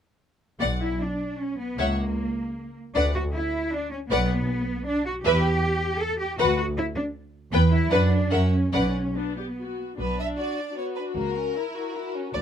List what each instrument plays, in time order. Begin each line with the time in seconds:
0.60 double bass section B1, cello section B3, viola section D5, violin section F#5
0.80 cello section E4
1.00 cello section D4
1.40 cello section C#4
1.59 cello section B3
1.78 double bass section C#2, cello section A#3, viola section C#5, violin section E5 F#5
2.95 double bass section D2, cello section D4, viola section B4, violin section D5 F#5
3.15 cello section F#4
3.34 cello section E4
3.72 cello section D4
3.91 cello section C#4
4.10 double bass section B1, cello section B3, viola section B4, violin section D5 F#5
4.87 cello section D4
5.06 cello section F#4
5.24 double bass section E2, cello section G4, viola section B4, violin section B4 E5
6.00 cello section A4
6.20 cello section G4
6.38 double bass section D2, cello section F#4, viola section B4, violin section B4 F#5
6.58 cello section F#4
6.77 cello section E4
6.96 cello section D4
7.52 double bass section E2, cello section B3, viola section B4, violin section B4 G5
7.72 cello section E4
7.91 double bass section F#2, cello section D4, viola section B4, violin section B4 F#5
8.30 double bass section F#2, cello section C#4, viola section A#4, violin section E5 F#5
8.73 double bass section B1, cello section C#4, viola section B4, violin section D5 F#5
9.15 cello section B3, viola section D4
9.37 viola section G4
9.59 viola section F#4
9.99 double bass section B1, cello section B2, violin section B3 B4, viola section D4
10.18 violin section D4 E5
10.38 violin section F#4 D5
10.58 violin section D4
10.77 violin section B3 C#5, viola section F#4
10.96 violin section D4 B4
11.16 double bass section C#2, cello section C#3, violin section A#3 A#4
11.36 violin section C#4
11.56 viola section E4, violin section E4
11.76 violin section F#4
11.95 violin section E4, viola section F#4
12.14 violin section C#4
12.33 double bass section D2, cello section D3, violin section B3 D5, viola section F#4